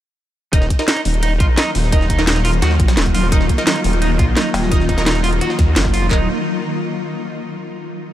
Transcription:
0.53 detuned saw bass D#1, synth drone D#3 F#3 A#3 F4, clean electric guitar D#4, synth stab D#4 A#4 D#5, kick, closed hi-hat
0.62 snare
0.70 kick, closed hi-hat
0.79 synth stab D#4 A#4 D#5, snare, closed hi-hat
0.88 clean electric guitar D#4, snare, closed hi-hat
0.97 cross-stick, closed hi-hat
1.05 detuned saw bass D#1, closed hi-hat, open hi-hat
1.14 closed hi-hat
1.23 clean electric guitar D#4, closed hi-hat, open hi-hat
1.40 detuned saw bass A#1, clean electric guitar F4, kick, closed hi-hat
1.58 clean electric guitar D#4, snare, closed hi-hat
1.75 detuned saw bass D#1, snare, closed hi-hat, open hi-hat
1.84 snare
1.92 synth stab D#4 A#4 D#5, clean electric guitar D#4, kick, closed hi-hat
2.01 snare
2.10 detuned saw bass D#1, clean electric guitar D#4, kick, closed hi-hat
2.19 synth stab D#4 A#4 D#5, snare, closed hi-hat
2.27 clean electric guitar D#4, snare, closed hi-hat
2.36 snare, closed hi-hat
2.45 clean electric guitar F4, closed hi-hat, open hi-hat
2.53 closed hi-hat
2.62 detuned saw bass D#2, clean electric guitar F#4, cross-stick, snare, closed hi-hat
2.71 snare
2.80 detuned saw bass A#1, kick, closed hi-hat
2.88 snare, closed hi-hat
2.97 detuned saw bass D#1, snare, closed hi-hat
3.06 kick, closed hi-hat
3.15 detuned saw bass D#1, clean electric guitar F4, closed hi-hat, open hi-hat
3.23 cross-stick
3.32 detuned saw bass D#1, synth stab D#4 A#4 D#5, clean electric guitar D#4, kick, closed hi-hat
3.41 snare
3.49 kick, closed hi-hat
3.58 synth stab D#4 A#4 D#5, snare, closed hi-hat
3.67 clean electric guitar D#4, snare, closed hi-hat
3.76 cross-stick, closed hi-hat
3.84 detuned saw bass D#1, closed hi-hat, open hi-hat
3.93 closed hi-hat
4.02 clean electric guitar D#4, closed hi-hat, open hi-hat
4.19 detuned saw bass A#1, clean electric guitar F4, kick, closed hi-hat
4.37 clean electric guitar D#4, snare, closed hi-hat
4.54 wobble bass D#1, snare, closed hi-hat, open hi-hat
4.63 snare
4.71 clean electric guitar D#4, synth stab D#4 A#4 D#5, kick, closed hi-hat
4.80 snare
4.89 detuned saw bass D#1, clean electric guitar D#4, kick, closed hi-hat
4.98 synth stab D#4 A#4 D#5, snare, closed hi-hat
5.06 clean electric guitar D#4, snare, closed hi-hat
5.15 snare, closed hi-hat
5.24 clean electric guitar F4, closed hi-hat, open hi-hat
5.41 clean electric guitar F#4, cross-stick, closed hi-hat
5.50 snare
5.59 detuned saw bass D#2, kick, snare, closed hi-hat
5.76 detuned saw bass F#1, snare, closed hi-hat
5.85 kick, snare
5.94 clean electric guitar F4, closed hi-hat, open hi-hat
6.02 cross-stick
6.11 detuned saw bass D#1, clean electric guitar D#4, synth stab D#4 A#4 D#5, kick, clap

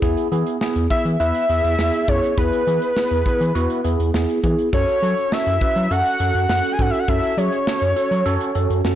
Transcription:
0.02 analog synth bass E2, tine electric piano B3 E4 G#4, kick, closed hi-hat
0.17 closed hi-hat
0.32 analog synth bass E3, tine electric piano B3 E4 G#4, closed hi-hat
0.47 closed hi-hat
0.61 tine electric piano B3 E4 G#4, snare
0.76 analog synth bass E2, closed hi-hat
0.90 tine electric piano B3 E4 G#4, analog synth lead E5, kick, closed hi-hat
1.05 analog synth bass E3, closed hi-hat
1.20 analog synth bass E2, tine electric piano B3 E4 B4, analog synth lead E5, closed hi-hat
1.35 closed hi-hat
1.49 analog synth bass E2, tine electric piano B3 E4 G#4, closed hi-hat
1.64 analog synth bass E2, closed hi-hat
1.79 analog synth bass E2, tine electric piano B3 E4 G#4, snare
1.94 closed hi-hat
2.08 analog synth bass F#2, tine electric piano B3 E4 G#4, analog synth lead C#5, kick, closed hi-hat
2.23 closed hi-hat
2.38 analog synth bass E2, tine electric piano B3 E4 G#4, analog synth lead B4, kick, closed hi-hat
2.53 closed hi-hat
2.67 analog synth bass E3, tine electric piano B3 E4 G#4, closed hi-hat
2.82 closed hi-hat
2.96 tine electric piano B3 E4 G#4, snare
3.11 analog synth bass E2, closed hi-hat
3.26 tine electric piano B3 E4 G#4, kick, closed hi-hat
3.41 analog synth bass E3, closed hi-hat
3.55 analog synth bass E2, tine electric piano B3 E4 F#4, closed hi-hat
3.70 closed hi-hat
3.85 analog synth bass E2, tine electric piano B3 E4 G#4, closed hi-hat
3.99 analog synth bass E2, closed hi-hat
4.14 analog synth bass E2, tine electric piano B3 E4 G#4, snare
4.29 closed hi-hat
4.43 analog synth bass E3, tine electric piano B3 E4 G#4, kick, closed hi-hat
4.59 closed hi-hat
4.73 analog synth bass F#2, tine electric piano C#4 F#4 A4, analog synth lead C#5, kick, closed hi-hat
4.88 closed hi-hat
5.02 analog synth bass F#3, tine electric piano C#4 F#4 A4, closed hi-hat
5.17 closed hi-hat
5.32 tine electric piano C#4 F#4 A4, analog synth lead E5, snare
5.47 analog synth bass F#2, closed hi-hat
5.61 tine electric piano C#4 F#4 B4, kick, closed hi-hat
5.76 analog synth bass F#3, closed hi-hat
5.91 analog synth bass F#2, tine electric piano C#4 F#4 A4, analog synth lead F#5, closed hi-hat
6.05 closed hi-hat
6.20 analog synth bass F#2, tine electric piano C#4 F#4 A4, closed hi-hat
6.35 analog synth bass F#2, closed hi-hat
6.49 analog synth bass F#2, tine electric piano C#4 F#4 A4, analog synth lead F#5, snare
6.64 closed hi-hat
6.72 analog synth lead G#5
6.79 analog synth bass G#2, tine electric piano C#4 F#4 A4, analog synth lead F#5, kick, closed hi-hat
6.90 analog synth lead E5, closed hi-hat
6.99 analog synth lead F#5
7.08 analog synth bass F#2, tine electric piano C#4 F#4 A4, analog synth lead E5, kick, closed hi-hat
7.23 closed hi-hat
7.37 analog synth bass F#3, tine electric piano C#4 F#4 G#4, analog synth lead C#5, closed hi-hat
7.52 closed hi-hat
7.67 tine electric piano C#4 F#4 A4, snare
7.82 analog synth bass F#2, closed hi-hat
7.96 tine electric piano C#4 F#4 A4, closed hi-hat
8.11 analog synth bass F#3, closed hi-hat
8.26 analog synth bass F#2, tine electric piano C#4 F#4 A4, closed hi-hat
8.41 closed hi-hat
8.55 analog synth bass F#2, tine electric piano C#4 F#4 A4, closed hi-hat
8.70 analog synth bass F#2, closed hi-hat
8.85 analog synth bass F#2, tine electric piano C#4 F#4 A4, snare

